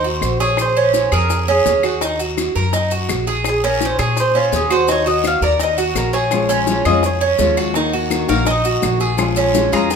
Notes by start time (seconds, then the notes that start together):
Already playing: D#2 C5
0.04 F#4, high bongo
0.21 A#1, high bongo, low bongo, short guiro, claves, maracas
0.39 G#4 C#5, high bongo, short guiro, maracas
0.57 C5, high bongo, long guiro, claves, maracas
0.77 C#4
0.94 high bongo, short guiro, maracas
1.12 F2 G#4 A#4, high bongo, short guiro, claves, maracas
1.30 high bongo, long guiro, maracas
1.48 C#4 G#4, high bongo
1.66 D#2, high bongo, low bongo, short guiro, maracas
1.83 F#4, high bongo, short guiro, claves, maracas
2.01 D#4, high bongo, long guiro, maracas
2.19 F#4, maracas
2.37 high bongo, short guiro, claves, maracas
2.55 F#2 A#4, high bongo, short guiro, maracas
2.73 D#4, high bongo, long guiro, maracas
2.91 F#4, high bongo, maracas
3.09 A#1, high bongo, low bongo, short guiro, claves, maracas
3.27 G#4, high bongo, short guiro, maracas
3.44 high bongo, long guiro, claves, maracas
3.49 G#4
3.64 C#4 A#4
3.80 high bongo, short guiro, maracas
3.85 C5
3.98 A#2 G#4 C#5, high bongo, short guiro, claves, maracas
4.16 high bongo, long guiro, maracas
4.20 C5
4.35 C#4 F4, high bongo
4.52 D#2 G#4, high bongo, low bongo, short guiro, maracas
4.70 F#4 C5, high bongo, short guiro, claves, maracas
4.88 D#4 C#5, high bongo, long guiro, maracas
5.06 F#4 D#5
5.24 F5, high bongo, short guiro, claves, maracas
5.41 D#2 A#4 D5, high bongo, short guiro, maracas
5.60 D#4 D#5, high bongo, long guiro, maracas
5.78 F#4, high bongo, maracas
5.94 A#1 A#4, high bongo, low bongo, short guiro, claves, maracas
6.13 G#4 C#5, high bongo, short guiro, maracas
6.31 F3 G#3 C#4 F4, high bongo, long guiro, claves, maracas
6.49 C#4, maracas
6.67 F3 G#3 C#4 F4, high bongo, short guiro, maracas
6.85 F2 G#3 C#4 F4 G#4 D#5, high bongo, short guiro, claves, maracas
7.03 C#5, muted nylon-string guitar stroke, high bongo, long guiro, maracas
7.21 C#4, high bongo
7.39 D#2 F3 G#3 C#4 F4, high bongo, low bongo, short guiro, maracas
7.57 F#4, high bongo, short guiro, claves, maracas
7.74 D#3 A#3 D#4 F#4, high bongo, long guiro, maracas
7.93 F#4
8.11 D#3 A#3 D#4 F#4, high bongo, short guiro, claves, maracas
8.28 A#1 A#3 D#4 F#4 A#4 F5, high bongo, short guiro, maracas
8.45 D#4, muted nylon-string guitar stroke, high bongo, long guiro, maracas
8.50 D#5
8.65 F#4, high bongo, maracas
8.81 A#1 D#3 A#3 D#4 F#4, high bongo, low bongo, short guiro, claves, maracas
9.00 G#4, high bongo, short guiro, maracas
9.17 F3 G#3 C#4 F4, high bongo, long guiro, claves, maracas
9.36 C#4, maracas
9.53 F3 G#3 C#4 F4, high bongo, short guiro, maracas
9.72 F2 G#3 C#4 F4 G#4 A#5, high bongo, short guiro, claves, maracas
9.90 muted nylon-string guitar stroke, high bongo, long guiro, maracas